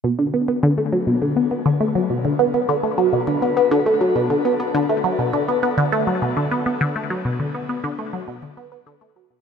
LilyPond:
\new Staff \with { instrumentName = "Synth arpeggio sound" } { \clef bass \time 4/4 \key b \minor \tempo 4 = 102 b,16 d16 b16 b16 d16 a16 fis16 b,16 d16 b16 b16 d16 a16 fis16 b,16 d16 | b16 b16 d16 a16 fis16 b,16 d16 b16 b16 d16 a16 fis16 b,16 d16 b16 b16 | d16 a16 fis16 b,16 d16 b16 b16 d16 a16 fis16 b,16 d16 b16 b16 d16 a16 | fis16 b,16 d16 b16 b16 d16 a16 fis16 b,16 d16 b16 b16 d16 a16 fis16 b,16 | }